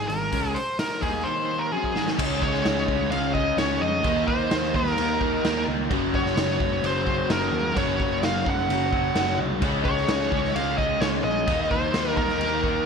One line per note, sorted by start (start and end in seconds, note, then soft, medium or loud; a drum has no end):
0.08 0.31 G#1 medium
0.08 0.28 G#2 medium
0.08 0.28 D#3 medium
0.08 0.57 A#4 loud
0.08 open hi-hat soft
0.31 0.54 C#2 medium
0.31 0.55 C#3 loud
0.31 0.55 G#3 loud
0.31 0.56 C#4 medium
0.31 kick loud
0.31 open hi-hat medium
0.54 0.77 C5 medium
0.54 open hi-hat medium
0.79 1.01 A#4 medium
0.79 snare loud
0.79 open hi-hat medium
1.01 1.24 D#2 medium
1.01 1.24 D#3 medium
1.01 1.25 A#3 loud
1.01 1.25 D#4 loud
1.01 1.27 G#4 medium
1.01 kick medium
1.01 open hi-hat medium
1.23 1.71 D#3 medium
1.23 1.72 A#3 medium
1.23 1.72 D#4 loud
1.23 1.61 C5 medium
1.59 1.72 A#4 medium
1.71 1.95 F#3 medium
1.71 1.95 C#4 medium
1.71 1.95 F#4 medium
1.71 2.07 G#4 medium
1.71 high tom soft
1.84 kick medium
1.95 2.18 G#2 medium
1.95 2.16 D#3 loud
1.95 2.18 G#3 medium
1.95 snare medium
2.08 snare medium
2.17 2.39 C#2 loud
2.17 3.09 C#3 medium
2.17 3.33 C#3 medium
2.17 3.33 G#3 medium
2.17 3.10 G#3 loud
2.17 3.33 C#4 medium
2.17 kick loud
2.17 crash loud
2.17 crash medium
2.21 3.12 C#4 loud
2.42 2.62 C#2 medium
2.42 3.08 C#5 medium
2.42 kick medium
2.54 snare soft
2.65 2.85 C#2 medium
2.65 snare loud
2.65 crash medium
2.88 3.08 C#2 medium
2.88 4.03 C#3 medium
2.88 4.04 G#3 medium
2.88 4.03 C#4 medium
2.88 kick medium
3.10 3.51 C#2 loud
3.10 4.02 C#3 medium
3.10 4.03 G#3 medium
3.10 3.34 F5 loud
3.10 crash medium
3.14 4.04 C#4 medium
3.34 3.56 C#3 medium
3.34 3.57 G#3 medium
3.34 3.56 C#4 medium
3.34 3.56 D#5 loud
3.34 kick medium
3.57 3.78 C#2 medium
3.57 4.03 C#3 medium
3.57 4.03 G#3 medium
3.57 4.04 C#4 medium
3.57 3.82 C#5 medium
3.57 snare loud
3.57 crash medium
3.81 4.01 F2 medium
3.81 4.29 D#5 loud
4.02 4.25 D#2 loud
4.02 4.95 D#3 medium
4.02 5.19 D#3 medium
4.02 4.98 A#3 loud
4.02 5.21 A#3 loud
4.02 5.18 D#4 medium
4.02 4.97 D#4 loud
4.02 kick loud
4.02 crash medium
4.27 4.48 D#2 medium
4.27 4.75 C5 medium
4.27 kick medium
4.51 4.71 D#2 loud
4.51 snare loud
4.51 crash medium
4.73 4.94 D#2 medium
4.73 5.90 D#3 medium
4.73 5.92 A#3 medium
4.73 5.89 D#4 medium
4.73 5.64 A#4 medium
4.73 kick medium
4.86 snare soft
4.96 5.38 D#2 loud
4.96 5.88 D#3 medium
4.96 5.93 A#3 medium
4.96 5.90 D#4 loud
4.96 crash medium
5.20 5.42 D#3 medium
5.20 5.44 A#3 medium
5.20 5.42 D#4 loud
5.20 kick medium
5.43 5.65 D#2 medium
5.43 5.89 D#3 medium
5.43 5.91 A#3 medium
5.43 5.89 D#4 medium
5.43 snare loud
5.43 crash medium
5.67 5.87 C#2 loud
5.89 6.11 F#1 loud
5.89 7.04 F#2 medium
5.89 6.81 F#2 medium
5.89 7.05 C#3 medium
5.89 6.82 C#3 loud
5.89 7.04 F#3 loud
5.89 kick loud
5.89 crash medium
5.93 6.86 F#3 loud
6.14 6.34 F#1 medium
6.14 6.85 C#5 medium
6.14 kick medium
6.26 snare soft
6.36 6.56 F#1 loud
6.36 snare loud
6.36 crash medium
6.60 6.80 F#1 loud
6.60 7.74 F#2 medium
6.60 7.75 C#3 medium
6.60 7.74 F#3 medium
6.60 kick medium
6.82 7.23 F#1 loud
6.82 7.73 F#2 medium
6.82 7.75 C#3 medium
6.82 7.32 C5 loud
6.82 crash medium
6.86 7.76 F#3 loud
7.05 7.28 F#2 medium
7.05 7.28 C#3 medium
7.05 7.28 F#3 medium
7.05 kick medium
7.29 7.49 F#1 medium
7.29 7.74 F#2 medium
7.29 7.75 C#3 medium
7.29 7.75 F#3 medium
7.29 7.74 A#4 medium
7.29 snare loud
7.29 crash medium
7.52 7.72 D#2 medium
7.74 7.96 F#1 loud
7.74 8.67 F#2 medium
7.74 8.90 F#2 medium
7.74 8.91 C#3 loud
7.74 8.68 C#3 medium
7.74 8.90 F#3 medium
7.74 8.20 C#5 medium
7.74 kick loud
7.74 crash medium
7.79 8.69 F#3 loud
7.99 8.19 F#1 medium
7.99 kick medium
8.22 8.42 F#1 loud
8.22 8.48 F5 loud
8.22 snare loud
8.22 crash medium
8.46 8.66 F#1 medium
8.46 9.61 F#2 medium
8.46 9.60 C#3 medium
8.46 9.60 F#3 medium
8.46 kick medium
8.50 9.36 F#5 loud
8.68 9.09 F#1 loud
8.68 9.60 F#2 medium
8.68 9.60 C#3 medium
8.68 9.62 F#3 medium
8.68 crash medium
8.91 9.13 F#2 medium
8.91 9.14 C#3 medium
8.91 9.13 F#3 medium
8.91 kick medium
9.14 9.35 F#1 medium
9.14 9.60 F#2 medium
9.14 9.60 C#3 medium
9.14 9.61 F#3 medium
9.14 snare loud
9.14 crash medium
9.38 9.62 C2 medium
9.61 9.82 C#2 loud
9.61 10.53 C#3 medium
9.61 10.76 C#3 medium
9.61 10.76 G#3 medium
9.61 10.54 G#3 loud
9.61 10.77 C#4 medium
9.61 kick loud
9.61 crash medium
9.65 10.55 C#4 loud
9.85 10.05 C#2 medium
9.85 10.56 C#5 loud
9.85 kick medium
9.97 snare soft
10.08 10.28 C#2 medium
10.08 snare loud
10.08 crash medium
10.32 10.52 C#2 medium
10.32 11.47 C#3 medium
10.32 11.47 G#3 medium
10.32 11.46 C#4 medium
10.32 kick medium
10.44 snare soft
10.54 10.95 C#2 loud
10.54 11.45 C#3 medium
10.54 11.46 G#3 medium
10.54 11.47 C#4 medium
10.54 10.77 F5 loud
10.54 crash medium
10.78 11.00 C#3 medium
10.78 11.00 G#3 medium
10.78 10.99 C#4 medium
10.78 11.02 D#5 medium
10.78 kick medium
11.01 11.21 C#2 medium
11.01 11.46 C#3 medium
11.01 11.46 G#3 medium
11.01 11.47 C#4 medium
11.01 11.07 C#5 loud
11.01 snare loud
11.01 crash medium
11.24 11.44 A#1 loud
11.24 11.67 D#5 loud
11.46 11.67 D#2 loud
11.46 12.38 D#3 medium
11.46 12.61 D#3 medium
11.46 12.41 A#3 loud
11.46 12.62 A#3 medium
11.46 12.62 D#4 medium
11.46 kick loud
11.46 crash medium
11.50 12.40 D#4 loud
11.71 11.91 D#2 medium
11.71 12.17 C5 loud
11.71 kick medium
11.93 12.13 D#2 loud
11.93 snare loud
11.93 crash medium
12.16 12.37 D#2 loud
12.16 12.86 D#3 medium
12.16 12.86 A#3 medium
12.16 12.86 D#4 medium
12.16 12.86 A#4 medium
12.16 kick medium
12.29 snare soft
12.38 12.79 D#2 loud
12.38 12.86 D#3 medium
12.38 12.86 A#3 medium
12.38 crash medium
12.44 12.86 D#4 loud
12.63 12.85 D#3 medium
12.63 12.86 A#3 medium
12.63 12.85 D#4 medium
12.63 kick medium